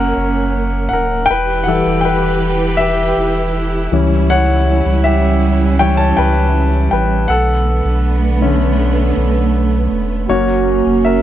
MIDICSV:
0, 0, Header, 1, 5, 480
1, 0, Start_track
1, 0, Key_signature, 2, "minor"
1, 0, Tempo, 750000
1, 828, Time_signature, 4, 2, 24, 8
1, 7182, End_track
2, 0, Start_track
2, 0, Title_t, "Grand piano"
2, 0, Program_c, 0, 0
2, 0, Control_c, 0, 64, 127
2, 0, Note_on_c, 0, 54, 51
2, 0, Note_on_c, 0, 58, 51
2, 0, Note_on_c, 0, 61, 58
2, 0, Note_on_c, 0, 66, 63
2, 0, Note_on_c, 0, 70, 73
2, 0, Note_on_c, 0, 73, 81
2, 0, Note_on_c, 0, 76, 75
2, 0, Note_on_c, 0, 78, 96
2, 558, Note_off_c, 0, 78, 0
2, 564, Note_off_c, 0, 70, 0
2, 567, Note_on_c, 0, 78, 81
2, 598, Note_on_c, 0, 70, 67
2, 800, Note_off_c, 0, 54, 0
2, 801, Note_off_c, 0, 58, 0
2, 802, Note_off_c, 0, 61, 0
2, 804, Note_on_c, 0, 79, 117
2, 816, Note_off_c, 0, 70, 0
2, 825, Note_off_c, 0, 78, 0
2, 836, Note_on_c, 0, 71, 81
2, 837, Control_c, 0, 64, 0
2, 840, Note_off_c, 0, 76, 0
2, 842, Note_off_c, 0, 66, 0
2, 842, Note_off_c, 0, 73, 0
2, 947, Control_c, 0, 64, 127
2, 1046, Note_on_c, 0, 78, 80
2, 1055, Note_off_c, 0, 71, 0
2, 1064, Note_off_c, 0, 79, 0
2, 1068, Note_on_c, 0, 52, 47
2, 1070, Note_on_c, 0, 55, 44
2, 1074, Note_on_c, 0, 64, 55
2, 1075, Note_on_c, 0, 69, 61
2, 1103, Note_off_c, 0, 78, 0
2, 1128, Note_off_c, 0, 69, 0
2, 1287, Note_on_c, 0, 79, 88
2, 1312, Note_on_c, 0, 71, 76
2, 1764, Note_off_c, 0, 71, 0
2, 1773, Note_on_c, 0, 76, 90
2, 1792, Note_off_c, 0, 79, 0
2, 1797, Note_on_c, 0, 67, 67
2, 2475, Note_off_c, 0, 76, 0
2, 2482, Note_off_c, 0, 52, 0
2, 2483, Note_off_c, 0, 55, 0
2, 2485, Note_off_c, 0, 64, 0
2, 2487, Note_off_c, 0, 67, 0
2, 2509, Note_on_c, 0, 52, 54
2, 2513, Note_on_c, 0, 55, 42
2, 2518, Control_c, 0, 64, 0
2, 2518, Note_on_c, 0, 61, 54
2, 2626, Control_c, 0, 64, 127
2, 2751, Note_on_c, 0, 78, 108
2, 2754, Note_on_c, 0, 73, 75
2, 3204, Note_off_c, 0, 78, 0
2, 3205, Note_off_c, 0, 73, 0
2, 3225, Note_on_c, 0, 76, 78
2, 3234, Note_on_c, 0, 67, 64
2, 3685, Note_off_c, 0, 67, 0
2, 3700, Note_off_c, 0, 52, 0
2, 3702, Note_off_c, 0, 55, 0
2, 3705, Note_off_c, 0, 61, 0
2, 3708, Note_on_c, 0, 79, 104
2, 3709, Note_on_c, 0, 52, 52
2, 3711, Note_on_c, 0, 55, 42
2, 3714, Note_on_c, 0, 61, 52
2, 3716, Note_on_c, 0, 73, 75
2, 3721, Note_off_c, 0, 76, 0
2, 3819, Note_off_c, 0, 79, 0
2, 3823, Note_off_c, 0, 73, 0
2, 3823, Note_on_c, 0, 81, 95
2, 3833, Note_on_c, 0, 73, 70
2, 3925, Note_off_c, 0, 52, 0
2, 3926, Note_off_c, 0, 55, 0
2, 3927, Note_off_c, 0, 61, 0
2, 3937, Note_off_c, 0, 81, 0
2, 3942, Note_off_c, 0, 73, 0
2, 3946, Note_on_c, 0, 79, 88
2, 3957, Note_on_c, 0, 71, 78
2, 4407, Note_off_c, 0, 71, 0
2, 4413, Note_off_c, 0, 79, 0
2, 4423, Note_on_c, 0, 79, 79
2, 4434, Note_on_c, 0, 71, 62
2, 4477, Note_off_c, 0, 79, 0
2, 4487, Note_off_c, 0, 71, 0
2, 4659, Note_on_c, 0, 78, 97
2, 4672, Note_on_c, 0, 69, 76
2, 4675, Control_c, 0, 64, 0
2, 4803, Control_c, 0, 64, 127
2, 5383, Note_on_c, 0, 50, 50
2, 5387, Note_on_c, 0, 57, 47
2, 5388, Note_on_c, 0, 61, 57
2, 5705, Note_off_c, 0, 50, 0
2, 5707, Note_off_c, 0, 57, 0
2, 5707, Note_off_c, 0, 61, 0
2, 6318, Note_off_c, 0, 78, 0
2, 6324, Note_off_c, 0, 69, 0
2, 6583, Note_on_c, 0, 54, 51
2, 6589, Note_on_c, 0, 58, 49
2, 6589, Note_on_c, 0, 73, 82
2, 6593, Note_on_c, 0, 61, 60
2, 6595, Note_on_c, 0, 66, 67
2, 6598, Control_c, 0, 64, 0
2, 6690, Control_c, 0, 64, 127
2, 7046, Note_off_c, 0, 66, 0
2, 7069, Note_on_c, 0, 76, 72
2, 7077, Note_on_c, 0, 70, 55
2, 7083, Note_off_c, 0, 73, 0
2, 7182, Note_off_c, 0, 54, 0
2, 7182, Note_off_c, 0, 58, 0
2, 7182, Note_off_c, 0, 61, 0
2, 7182, Note_off_c, 0, 70, 0
2, 7182, Note_off_c, 0, 76, 0
2, 7182, End_track
3, 0, Start_track
3, 0, Title_t, "French horn section"
3, 0, Program_c, 1, 60
3, 6585, Note_on_c, 1, 66, 97
3, 7182, Note_off_c, 1, 66, 0
3, 7182, End_track
4, 0, Start_track
4, 0, Title_t, "String section"
4, 0, Program_c, 2, 48
4, 0, Note_on_c, 2, 58, 71
4, 0, Note_on_c, 2, 61, 69
4, 809, Note_off_c, 2, 61, 0
4, 810, Note_off_c, 2, 58, 0
4, 829, Note_on_c, 2, 64, 72
4, 830, Note_on_c, 2, 52, 74
4, 832, Note_on_c, 2, 67, 69
4, 834, Note_on_c, 2, 71, 86
4, 2492, Note_off_c, 2, 52, 0
4, 2493, Note_off_c, 2, 67, 0
4, 2494, Note_off_c, 2, 71, 0
4, 2501, Note_on_c, 2, 55, 77
4, 2508, Note_on_c, 2, 61, 69
4, 4643, Note_off_c, 2, 55, 0
4, 4643, Note_off_c, 2, 64, 0
4, 4647, Note_off_c, 2, 61, 0
4, 4670, Note_on_c, 2, 57, 80
4, 4671, Note_on_c, 2, 59, 72
4, 4673, Note_on_c, 2, 50, 77
4, 6570, Note_off_c, 2, 57, 0
4, 6570, Note_off_c, 2, 59, 0
4, 6571, Note_off_c, 2, 50, 0
4, 6590, Note_on_c, 2, 58, 76
4, 6592, Note_on_c, 2, 61, 69
4, 7182, Note_off_c, 2, 58, 0
4, 7182, Note_off_c, 2, 61, 0
4, 7182, End_track
5, 0, Start_track
5, 0, Title_t, "Sub bass"
5, 0, Program_c, 3, 38
5, 0, Note_on_c, 3, 30, 96
5, 83, Note_off_c, 3, 30, 0
5, 109, Note_on_c, 3, 30, 102
5, 563, Note_off_c, 3, 30, 0
5, 586, Note_on_c, 3, 26, 97
5, 810, Note_off_c, 3, 26, 0
5, 833, Note_on_c, 3, 28, 91
5, 1166, Note_off_c, 3, 28, 0
5, 1191, Note_on_c, 3, 28, 109
5, 2004, Note_off_c, 3, 28, 0
5, 2032, Note_on_c, 3, 28, 86
5, 2484, Note_off_c, 3, 28, 0
5, 2508, Note_on_c, 3, 37, 100
5, 3082, Note_off_c, 3, 37, 0
5, 3109, Note_on_c, 3, 37, 88
5, 3923, Note_off_c, 3, 37, 0
5, 3954, Note_on_c, 3, 37, 89
5, 4405, Note_off_c, 3, 37, 0
5, 4430, Note_on_c, 3, 33, 85
5, 4652, Note_off_c, 3, 33, 0
5, 4666, Note_on_c, 3, 35, 94
5, 5001, Note_off_c, 3, 35, 0
5, 5024, Note_on_c, 3, 35, 103
5, 5840, Note_off_c, 3, 35, 0
5, 5869, Note_on_c, 3, 35, 91
5, 6323, Note_off_c, 3, 35, 0
5, 6346, Note_on_c, 3, 28, 91
5, 6570, Note_off_c, 3, 28, 0
5, 6590, Note_on_c, 3, 30, 90
5, 6924, Note_off_c, 3, 30, 0
5, 6952, Note_on_c, 3, 30, 99
5, 7182, Note_off_c, 3, 30, 0
5, 7182, End_track
0, 0, End_of_file